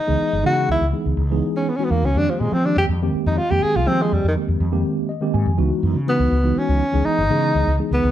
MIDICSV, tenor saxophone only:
0, 0, Header, 1, 2, 480
1, 0, Start_track
1, 0, Tempo, 489396
1, 437, Time_signature, 7, 3, 24, 8
1, 7958, End_track
2, 0, Start_track
2, 0, Title_t, "Tenor saxophone"
2, 0, Program_c, 0, 66
2, 0, Note_on_c, 0, 63, 85
2, 443, Note_off_c, 0, 63, 0
2, 452, Note_on_c, 0, 66, 92
2, 669, Note_off_c, 0, 66, 0
2, 701, Note_on_c, 0, 64, 79
2, 838, Note_off_c, 0, 64, 0
2, 1539, Note_on_c, 0, 61, 72
2, 1660, Note_on_c, 0, 59, 64
2, 1675, Note_off_c, 0, 61, 0
2, 1726, Note_on_c, 0, 61, 81
2, 1740, Note_off_c, 0, 59, 0
2, 1809, Note_on_c, 0, 59, 73
2, 1824, Note_off_c, 0, 61, 0
2, 1870, Note_on_c, 0, 58, 79
2, 1885, Note_off_c, 0, 59, 0
2, 2013, Note_on_c, 0, 61, 79
2, 2028, Note_off_c, 0, 58, 0
2, 2133, Note_on_c, 0, 62, 89
2, 2148, Note_off_c, 0, 61, 0
2, 2256, Note_on_c, 0, 53, 54
2, 2271, Note_off_c, 0, 62, 0
2, 2347, Note_on_c, 0, 56, 80
2, 2362, Note_off_c, 0, 53, 0
2, 2485, Note_on_c, 0, 60, 80
2, 2499, Note_off_c, 0, 56, 0
2, 2606, Note_on_c, 0, 62, 79
2, 2620, Note_off_c, 0, 60, 0
2, 2721, Note_off_c, 0, 62, 0
2, 2726, Note_on_c, 0, 67, 89
2, 2796, Note_off_c, 0, 67, 0
2, 3206, Note_on_c, 0, 63, 74
2, 3310, Note_on_c, 0, 65, 87
2, 3324, Note_off_c, 0, 63, 0
2, 3439, Note_on_c, 0, 67, 85
2, 3454, Note_off_c, 0, 65, 0
2, 3561, Note_on_c, 0, 68, 93
2, 3575, Note_off_c, 0, 67, 0
2, 3691, Note_on_c, 0, 65, 80
2, 3706, Note_off_c, 0, 68, 0
2, 3800, Note_on_c, 0, 60, 88
2, 3815, Note_off_c, 0, 65, 0
2, 3943, Note_on_c, 0, 56, 77
2, 3957, Note_off_c, 0, 60, 0
2, 4057, Note_on_c, 0, 55, 69
2, 4072, Note_off_c, 0, 56, 0
2, 4168, Note_off_c, 0, 55, 0
2, 4197, Note_on_c, 0, 51, 74
2, 4258, Note_off_c, 0, 51, 0
2, 5971, Note_on_c, 0, 59, 82
2, 6458, Note_on_c, 0, 61, 84
2, 6473, Note_off_c, 0, 59, 0
2, 6918, Note_on_c, 0, 63, 87
2, 6933, Note_off_c, 0, 61, 0
2, 7637, Note_off_c, 0, 63, 0
2, 7780, Note_on_c, 0, 59, 85
2, 7958, Note_off_c, 0, 59, 0
2, 7958, End_track
0, 0, End_of_file